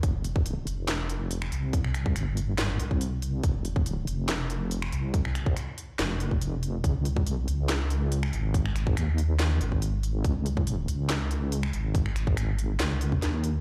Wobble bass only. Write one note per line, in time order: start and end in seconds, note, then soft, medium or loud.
0.03 0.65 F1 loud
0.67 1.50 F1 loud
1.52 2.14 C2 loud
2.16 2.78 G1 loud
2.80 3.42 C2 loud
3.44 4.06 F1 loud
4.07 4.91 F1 loud
4.93 5.55 C2 loud
5.99 6.40 F1 loud
6.41 6.82 F1 loud
6.84 7.28 C#2 loud
7.28 7.46 C2 loud
7.48 8.31 C#2 loud
8.33 8.95 G#1 loud
8.97 9.59 D#2 loud
9.61 10.23 G#1 loud
10.24 10.87 C#2 loud
10.88 11.72 C#2 loud
11.73 12.36 G#1 medium
12.37 12.78 G#1 loud
12.80 13.21 C#2 loud
13.22 13.61 D#2 loud